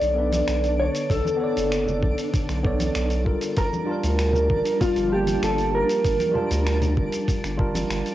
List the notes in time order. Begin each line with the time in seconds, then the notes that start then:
Already playing: D3 B3 D4 A4 C#5 D5 D7
0.01 B1, open hi-hat, shaker
0.14 B3 A4
0.18 D4 B4
0.32 open hi-hat, high conga, shaker
0.48 B1, finger snap, open hi-hat, shaker
0.64 open hi-hat, shaker
0.79 C#5
0.94 open hi-hat, shaker
1.10 B1 A4, kick, open hi-hat, shaker
1.25 high conga, shaker
1.37 B3 A4
1.41 C#5 D5
1.57 F#1, open hi-hat, shaker
1.72 finger snap, open hi-hat, shaker
1.87 low conga, shaker
2.02 B1, kick, high conga
2.18 open hi-hat, shaker
2.34 kick, open hi-hat, shaker
2.49 B1, finger snap, open hi-hat, shaker
2.63 B3 A4 C#5 D5, kick
2.79 open hi-hat, high conga, shaker
2.95 B1, finger snap, open hi-hat, shaker
3.10 open hi-hat, shaker
3.24 G3 F4 A4 A#4, kick
3.41 open hi-hat, shaker
3.56 G1 F3 G3 G4 A#4, kick, open hi-hat, shaker
3.73 high conga, shaker
3.85 G3 F4
3.89 A#4 A5
4.04 D2, open hi-hat, shaker
4.19 finger snap, open hi-hat, shaker
4.33 low conga, shaker
4.49 G1, kick, high conga
4.65 open hi-hat, shaker
4.81 F4, kick, open hi-hat, shaker
4.96 G1, open hi-hat, shaker
5.08 G3 F4
5.12 A#3 G4 A5
5.27 open hi-hat, high conga, shaker
5.42 G1 A4, finger snap, open hi-hat, shaker
5.58 open hi-hat, shaker
5.75 A#4
5.89 open hi-hat, shaker
6.04 G1, kick, open hi-hat, shaker
6.19 open hi-hat, high conga, shaker
6.32 G3 F4 A5, low conga
6.38 A#4
6.51 D2, open hi-hat, shaker
6.67 finger snap, open hi-hat, shaker
6.82 open hi-hat, low conga, shaker
6.97 G1, kick, high conga
7.13 open hi-hat, shaker
7.28 kick, open hi-hat, shaker
7.44 G1, finger snap, open hi-hat, shaker
7.57 G3 F4 A#4 A5, kick
7.75 open hi-hat, high conga, shaker
7.90 G1, finger snap, open hi-hat, shaker
8.06 open hi-hat, shaker